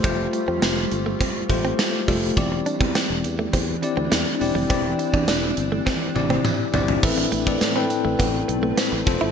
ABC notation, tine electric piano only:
X:1
M:4/4
L:1/16
Q:1/4=103
K:Am
V:1 name="Tine electric piano"
[A,FGc]6 z4 [A,FGc]3 z [A,FGA]2 | [CEGd]6 z4 [CEGd]3 z [CEGd]2 | [CEGd]6 z4 [CEGd]3 z [CEGd]2 | [CEABe]2 z [CEABd]2 [CEABg]6 z3 [FAc]2 |]
V:2 name="Tine electric piano" clef=bass
z16 | E,6 z8 z2 | E,6 z8 z2 | A,,6 z8 z2 |]